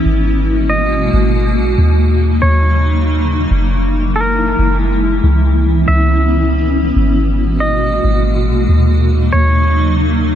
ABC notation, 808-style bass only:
X:1
M:4/4
L:1/8
Q:1/4=139
K:G#m
V:1 name="808-style bass" clef=bass
G,,,4- G,,, G,,,2 A,,, | D,,3 D,,4- D,, | F,,,4- F,,, F,,,3 | C,,3 C,,4- C,, |
G,,,4- G,,, G,,,2 A,,, | D,,3 D,,4- D,, |]